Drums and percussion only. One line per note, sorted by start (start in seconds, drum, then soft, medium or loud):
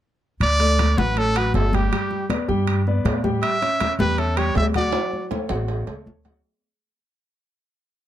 0.41 high conga soft
0.41 high timbale medium
0.60 high conga soft
0.60 high timbale medium
0.79 high conga medium
0.79 high timbale medium
0.79 low timbale medium
0.98 high conga medium
1.17 high conga soft
1.17 high timbale medium
1.35 high conga soft
1.35 high timbale medium
1.54 high conga medium
1.54 low timbale medium
1.73 high conga medium
1.73 high timbale medium
1.92 high conga soft
1.92 high timbale loud
2.11 high conga soft
2.30 high conga medium
2.30 high timbale medium
2.30 low timbale medium
2.49 high conga soft
2.67 high conga soft
2.67 high timbale medium
2.87 high conga soft
3.05 high conga medium
3.05 high timbale medium
3.05 low timbale medium
3.24 high conga medium
3.43 high conga soft
3.43 high timbale loud
3.62 high conga soft
3.62 high timbale medium
3.80 high conga medium
3.80 high timbale medium
3.80 low timbale medium
4.00 high conga medium
4.18 high conga soft
4.18 high timbale medium
4.37 high conga soft
4.37 high timbale medium
4.55 high conga medium
4.55 low timbale medium
4.74 high conga medium
4.74 high timbale medium
4.93 high conga soft
4.93 high timbale loud
5.13 high conga soft
5.31 high conga medium
5.31 high timbale medium
5.49 high conga soft
5.49 low timbale medium
5.68 high conga soft
5.68 low timbale medium
5.87 high conga soft
5.87 low timbale loud
6.07 high conga medium
6.25 high conga medium
6.25 low timbale medium